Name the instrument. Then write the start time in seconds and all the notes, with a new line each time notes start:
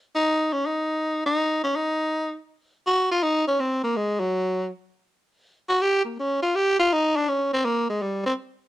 tenor saxophone
0.15 D#4
0.53 C#4
0.66 D#4
1.26 D#4
1.63 C#4
1.76 D#4
2.87 F#4
3.11 F4
3.23 D#4
3.47 C#4
3.60 C4
3.84 A#3
3.96 G#3
4.20 F#3
5.69 F#4
5.81 G4
6.05 A#3
6.19 C#4
6.42 F4
6.55 G4
6.79 F4
6.93 D#4
7.16 D4
7.28 C#4
7.53 C4
7.65 A#3
7.89 G#3
8.02 G3
8.26 C4